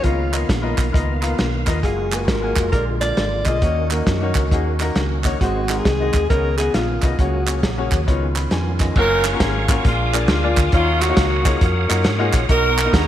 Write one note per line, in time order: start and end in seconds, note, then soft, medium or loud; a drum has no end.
0.00 1.80 D#3 medium
0.00 0.20 B3 medium
0.00 0.49 F4 medium
0.00 1.80 F5 medium
0.00 closed hi-hat medium
0.04 0.43 C#2 loud
0.04 0.74 C#3 medium
0.04 3.58 A#3 medium
0.04 1.81 B3 medium
0.04 0.21 F4 medium
0.04 0.21 A#4 medium
0.04 0.21 D#5 medium
0.04 kick medium
0.32 0.46 B3 medium
0.32 0.46 F4 medium
0.32 0.47 A#4 medium
0.32 0.47 D#5 medium
0.32 clap medium
0.32 closed hi-hat medium
0.49 0.74 A#1 medium
0.49 kick medium
0.49 snare loud
0.49 closed hi-hat medium
0.62 0.83 B3 medium
0.62 0.83 F4 medium
0.62 0.83 A#4 medium
0.62 0.83 D#5 medium
0.78 0.92 B1 medium
0.78 kick medium
0.78 clap medium
0.78 closed hi-hat medium
0.92 1.32 C#2 medium
0.92 1.09 B3 medium
0.92 1.09 F4 medium
0.92 1.10 A#4 medium
0.92 1.10 D#5 medium
0.92 kick loud
0.92 closed hi-hat medium
1.21 1.41 B3 medium
1.21 1.42 F4 medium
1.21 1.42 A#4 medium
1.21 1.42 F5 medium
1.21 clap medium
1.21 closed hi-hat medium
1.39 1.63 B1 medium
1.39 snare loud
1.39 closed hi-hat medium
1.66 1.81 D#2 medium
1.66 1.76 B3 medium
1.66 1.76 F4 medium
1.66 1.76 A#4 medium
1.66 1.77 D#5 medium
1.66 kick medium
1.66 snare soft
1.66 clap medium
1.66 closed hi-hat medium
1.83 2.28 F#1 loud
1.83 3.60 G#3 medium
1.83 1.99 A#3 medium
1.83 2.71 F4 medium
1.83 2.72 F#4 medium
1.83 2.00 F#4 medium
1.83 2.17 G#4 medium
1.83 2.00 G#4 medium
1.83 2.00 F5 medium
1.83 kick medium
1.83 closed hi-hat medium
2.11 2.25 A#3 medium
2.11 2.26 F#4 medium
2.11 2.26 G#4 medium
2.11 2.23 B4 medium
2.11 2.26 G#5 medium
2.11 snare soft
2.11 clap loud
2.11 closed hi-hat medium
2.22 2.71 A#4 medium
2.28 2.52 G#1 medium
2.28 kick medium
2.28 snare loud
2.28 closed hi-hat medium
2.42 2.62 A#3 medium
2.42 2.62 F#4 medium
2.42 2.62 G#4 medium
2.42 2.63 G#5 medium
2.56 2.70 F1 medium
2.56 kick medium
2.56 clap medium
2.56 closed hi-hat medium
2.72 3.11 A#1 loud
2.72 3.42 A#2 medium
2.72 3.61 D3 medium
2.72 2.88 A#3 medium
2.72 3.61 F4 medium
2.72 2.89 F4 medium
2.72 2.89 G#4 medium
2.72 2.85 A#4 medium
2.72 2.89 D5 medium
2.72 kick loud
2.72 closed hi-hat medium
3.00 3.20 A#3 medium
3.00 3.21 F4 medium
3.00 3.21 G#4 medium
3.00 3.47 D5 loud
3.00 3.21 D5 medium
3.00 clap medium
3.00 closed hi-hat medium
3.17 3.42 G#1 medium
3.17 snare medium
3.17 closed hi-hat medium
3.45 3.60 B1 medium
3.45 3.55 A#3 medium
3.45 3.55 F4 medium
3.45 3.55 G#4 medium
3.45 3.56 D5 medium
3.45 3.90 D#5 medium
3.45 kick medium
3.45 clap medium
3.45 closed hi-hat medium
3.61 4.00 D#2 loud
3.61 7.15 D#3 medium
3.61 4.31 D#3 medium
3.61 3.78 A#3 medium
3.61 5.39 A#3 medium
3.61 5.39 C#4 medium
3.61 3.78 D#4 medium
3.61 5.39 F#4 medium
3.61 3.78 F#4 medium
3.61 3.79 C#5 medium
3.61 kick medium
3.61 closed hi-hat medium
3.90 4.04 A#3 medium
3.90 4.04 D#4 medium
3.90 4.04 F#4 medium
3.90 4.05 A#4 medium
3.90 clap medium
3.90 closed hi-hat medium
4.07 4.31 F#2 medium
4.07 kick medium
4.07 snare medium
4.07 closed hi-hat medium
4.21 4.41 A#3 medium
4.21 4.41 D#4 medium
4.21 4.41 F#4 medium
4.21 4.42 C#5 medium
4.35 4.51 C#2 medium
4.35 kick medium
4.35 clap medium
4.35 closed hi-hat medium
4.51 4.89 D#2 loud
4.51 4.67 A#3 medium
4.51 4.68 D#4 medium
4.51 4.68 F#4 medium
4.51 4.68 G#4 medium
4.51 kick loud
4.51 closed hi-hat medium
4.80 5.00 A#3 medium
4.80 5.00 D#4 medium
4.80 5.00 F#4 medium
4.80 5.00 A#4 loud
4.80 clap medium
4.80 closed hi-hat medium
4.96 5.34 C#2 medium
4.96 snare medium
4.96 closed hi-hat medium
5.24 5.33 A#3 medium
5.24 5.34 D#4 medium
5.24 5.34 F#4 medium
5.24 5.35 C#5 medium
5.24 kick medium
5.24 clap medium
5.24 closed hi-hat medium
5.39 5.79 G#1 loud
5.39 6.10 G#2 medium
5.39 6.28 G#3 medium
5.39 5.57 G#3 medium
5.39 6.28 C4 medium
5.39 5.57 D#4 medium
5.39 5.80 F#4 medium
5.39 5.57 F#4 medium
5.39 8.04 G#4 medium
5.39 5.58 C5 medium
5.39 kick medium
5.39 closed hi-hat medium
5.69 5.83 G#3 medium
5.69 5.83 D#4 medium
5.69 5.83 F#4 medium
5.69 5.83 A#4 medium
5.69 snare soft
5.69 clap medium
5.69 closed hi-hat medium
5.78 6.29 G#4 loud
5.85 6.09 C2 medium
5.85 kick medium
5.85 snare medium
5.85 closed hi-hat medium
6.00 6.19 G#3 medium
6.00 6.20 D#4 medium
6.00 6.20 F#4 medium
6.00 6.20 D#5 medium
6.14 6.28 D#2 medium
6.14 kick medium
6.14 clap medium
6.14 closed hi-hat medium
6.29 6.68 C#2 loud
6.29 6.99 C#3 medium
6.29 7.17 B3 medium
6.29 6.46 B3 medium
6.29 7.17 C#4 medium
6.29 6.46 D#4 medium
6.29 6.46 F#4 medium
6.29 6.56 A#4 loud
6.29 6.47 C#5 medium
6.29 kick loud
6.29 closed hi-hat medium
6.58 6.78 B3 medium
6.58 6.78 D#4 medium
6.58 6.78 F#4 medium
6.58 6.73 G#4 medium
6.58 6.79 D#5 medium
6.58 clap medium
6.58 closed hi-hat medium
6.74 6.98 A#1 medium
6.74 7.22 F4 medium
6.74 snare medium
6.74 closed hi-hat medium
7.02 7.16 C2 medium
7.02 7.11 B3 medium
7.02 7.11 D#4 medium
7.02 7.12 F#4 medium
7.02 7.12 D#5 medium
7.02 kick medium
7.02 clap medium
7.02 closed hi-hat medium
7.18 7.64 C#2 loud
7.18 8.07 C#3 medium
7.18 7.88 C#3 medium
7.18 8.07 F#3 medium
7.18 7.34 A#3 medium
7.18 8.07 A#3 medium
7.18 7.35 C#4 medium
7.18 7.35 F#4 medium
7.18 7.64 F#4 medium
7.18 7.35 C#5 medium
7.18 kick medium
7.18 closed hi-hat medium
7.46 7.60 A#3 medium
7.46 7.61 C#4 medium
7.46 7.61 F#4 medium
7.46 7.61 C#5 medium
7.46 clap loud
7.46 closed hi-hat medium
7.63 7.87 A#1 medium
7.63 kick medium
7.63 snare loud
7.63 closed hi-hat medium
7.77 7.97 A#3 medium
7.77 7.97 C#4 medium
7.77 7.97 F#4 medium
7.77 7.98 C#5 medium
7.92 8.05 D#2 medium
7.92 kick medium
7.92 clap medium
7.92 closed hi-hat medium
8.07 8.45 C#2 medium
8.07 8.76 C#3 medium
8.07 8.95 D#3 medium
8.07 8.23 B3 medium
8.07 8.95 B3 medium
8.07 8.95 C#4 medium
8.07 8.23 D#4 medium
8.07 8.95 F4 medium
8.07 8.24 F4 medium
8.07 8.24 C#5 medium
8.07 kick loud
8.07 closed hi-hat medium
8.35 8.51 B5 medium
8.35 clap medium
8.35 closed hi-hat medium
8.51 8.89 F2 medium
8.51 8.79 G#5 medium
8.51 snare medium
8.51 closed hi-hat medium
8.79 9.22 D#5 medium
8.79 kick medium
8.79 snare soft
8.79 clap medium
8.79 closed hi-hat medium
8.95 9.33 F#1 loud
8.95 9.20 A#3 medium
8.95 9.20 C#4 medium
8.95 9.81 C#4 medium
8.95 9.20 F4 medium
8.95 9.81 F4 medium
8.95 9.20 F#4 medium
8.95 10.71 A#4 medium
8.95 9.24 A#4 loud
8.95 9.84 C#5 medium
8.95 9.21 C#5 medium
8.95 10.71 F5 medium
8.95 9.84 C#6 medium
8.95 kick medium
8.95 crash medium
9.24 9.34 A#4 medium
9.24 snare soft
9.24 clap loud
9.24 closed hi-hat medium
9.32 9.50 A#3 medium
9.32 9.50 C#4 medium
9.32 9.50 F4 medium
9.32 9.50 F#4 medium
9.32 9.51 A#4 medium
9.40 9.78 G#1 loud
9.40 9.68 G#4 loud
9.40 kick medium
9.40 snare loud
9.40 closed hi-hat loud
9.68 9.84 A#3 medium
9.68 9.85 C#4 medium
9.68 9.85 F4 medium
9.68 9.85 F#4 medium
9.68 9.85 A#4 medium
9.68 kick loud
9.68 clap loud
9.68 closed hi-hat medium
9.73 9.86 F#4 medium
9.84 10.30 A#1 medium
9.84 10.53 A#2 medium
9.84 10.29 G#3 medium
9.84 10.30 D4 medium
9.84 10.14 F4 medium
9.84 10.72 G#5 medium
9.84 10.72 D6 medium
9.84 kick loud
9.84 closed hi-hat medium
10.13 10.26 A#3 medium
10.13 10.26 D4 medium
10.13 10.26 F4 medium
10.13 10.27 G#4 medium
10.13 10.30 G#4 medium
10.13 10.27 D5 medium
10.13 clap loud
10.13 closed hi-hat medium
10.28 10.53 D2 medium
10.28 10.71 G#3 medium
10.28 10.71 D4 medium
10.28 10.73 F4 medium
10.28 snare loud
10.28 closed hi-hat medium
10.42 10.62 A#3 medium
10.42 10.62 D4 medium
10.42 10.63 F4 medium
10.42 10.63 G#4 medium
10.42 10.63 D5 medium
10.56 10.71 D2 medium
10.56 kick medium
10.56 clap loud
10.56 closed hi-hat medium
10.72 11.10 D#2 loud
10.72 11.41 D#3 medium
10.72 10.96 A#3 medium
10.72 11.00 A#3 medium
10.72 11.00 C#4 medium
10.72 10.97 D#4 medium
10.72 10.97 F4 medium
10.72 11.00 F4 loud
10.72 10.97 F#4 medium
10.72 12.48 C#5 medium
10.72 10.97 C#5 medium
10.72 12.48 F5 medium
10.72 12.47 F#5 medium
10.72 13.07 D#6 medium
10.72 kick loud
10.72 closed hi-hat medium
11.01 11.85 A#3 medium
11.01 11.60 C#4 medium
11.01 11.45 F#4 medium
11.01 snare soft
11.01 clap loud
11.01 closed hi-hat medium
11.08 11.26 A#3 medium
11.08 11.26 D#4 medium
11.08 11.27 F4 medium
11.08 11.27 F#4 medium
11.08 11.27 C#5 medium
11.17 11.54 C#2 loud
11.17 kick medium
11.17 snare loud
11.17 closed hi-hat loud
11.44 11.64 A#3 medium
11.44 11.64 D#4 medium
11.44 11.64 F4 medium
11.44 11.65 F#4 medium
11.44 11.61 G#4 medium
11.44 11.65 C#5 medium
11.44 kick loud
11.44 clap loud
11.44 closed hi-hat medium
11.60 11.85 F2 loud
11.60 12.45 C#4 medium
11.60 12.45 F#4 medium
11.60 12.33 A#4 loud
11.60 kick loud
11.60 closed hi-hat medium
11.88 12.03 F#2 medium
11.88 12.02 A#3 medium
11.88 12.02 D#4 medium
11.88 12.02 F4 medium
11.88 12.03 F#4 medium
11.88 12.03 A#4 medium
11.88 clap loud
11.88 closed hi-hat medium
12.04 12.30 G#2 medium
12.04 snare loud
12.04 closed hi-hat medium
12.18 12.38 A#3 medium
12.18 12.39 D#4 medium
12.18 12.39 F4 medium
12.18 12.39 F#4 medium
12.18 12.39 G#4 loud
12.33 12.47 A#1 medium
12.33 kick medium
12.33 clap medium
12.33 closed hi-hat medium
12.48 12.87 B1 loud
12.48 13.07 B2 medium
12.48 13.07 B3 medium
12.48 12.73 B3 medium
12.48 12.73 D#4 medium
12.48 13.07 D#4 medium
12.48 13.07 F#4 medium
12.48 12.73 F#4 medium
12.48 12.73 A#4 medium
12.48 12.91 A#4 loud
12.48 12.74 D#5 medium
12.48 13.07 F#5 medium
12.48 13.07 A#5 medium
12.48 kick medium
12.48 closed hi-hat medium
12.78 clap loud
12.78 closed hi-hat medium
12.85 13.03 B3 medium
12.85 13.03 D#4 medium
12.85 13.03 F#4 medium
12.85 13.03 A#4 medium
12.85 13.04 D#5 medium
12.93 13.07 D#2 loud
12.93 13.07 G#4 loud
12.93 kick medium
12.93 snare loud
12.93 closed hi-hat loud